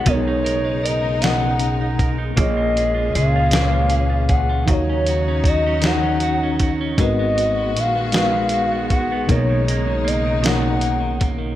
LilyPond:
<<
  \new Staff \with { instrumentName = "Soft synth lead" } { \time 6/8 \key b \lydian \tempo 4. = 52 cis''4 dis''8 fis''4 r8 | dis''4 eis''4. fis''8 | cis''4 dis''8 fis''4 r8 | dis''4 eis''4. fis''8 |
cis''4 dis''8 fis''4 r8 | }
  \new Staff \with { instrumentName = "Tine electric piano" } { \time 6/8 \key b \lydian <b, b d' dis' ais' cis''>4 r8 <b, b dis' ais' dis''>4 r8 | <ais, ais eis' gis' cis''>4 r8 <ais, ais eis' gis' b' cis''>4 r8 | <dis dis' fis' cis'' eis''>4 r8 <dis cis' dis' fis' cis''>4 r8 | <gis dis' fis' ais' b'>4 r8 <gis dis' fis' ais' b'>4 r8 |
<b, ais dis' ais' cis''>4 r8 <b, ais dis' ais' cis''>4 r8 | }
  \new Staff \with { instrumentName = "Clean electric guitar" } { \time 6/8 \key b \lydian b16 dis'16 ais'16 dis'16 ais'16 dis'16 b16 dis'16 ais'16 dis'16 ais'16 dis'16 | ais16 eis'16 gis'16 eis'16 gis'16 eis'16 ais16 eis'16 gis'16 eis'16 gis'16 eis'16 | dis16 cis'16 fis'16 cis'16 fis'16 cis'16 dis16 cis'16 fis'16 cis'16 fis'16 cis'16 | gis16 b16 fis'16 b16 fis'16 b16 gis16 b16 fis'16 b16 fis'16 b16 |
b,16 dis16 ais16 dis16 ais16 dis16 b,16 dis16 ais16 dis16 ais16 dis16 | }
  \new Staff \with { instrumentName = "String section" } { \clef bass \time 6/8 \key b \lydian << { <cis dis'>2. | <ais, cis'>2. | <cis dis'>2. | <b fis'>2. |
<cis dis'>2. | } \\ { gis2. | gis2. | fis2. | gis2.~ |
gis2. | } >> }
  \new Staff \with { instrumentName = "Upright bass" } { \clef bass \time 6/8 \key b \lydian b,,2. | ais,,4 cis,2 | dis,2. | gis,,4 ais,,2 |
b,,2. | }
  \new DrumStaff \with { instrumentName = "Drums" } \drummode { \time 6/8 <hh bd>8 hh8 hh8 <hh sn>8 hh8 <hh bd>8 | <hh bd>8 hh8 hh8 <hh sn>8 hh8 <hh bd>8 | <hh bd>8 hh8 <hh bd>8 <hh sn>8 hh8 <hh bd>8 | <hh bd>8 hh8 hh8 <hh sn>8 hh8 <hh bd>8 |
<hh bd>8 hh8 hh8 <hh sn>8 hh8 <hh bd>8 | }
>>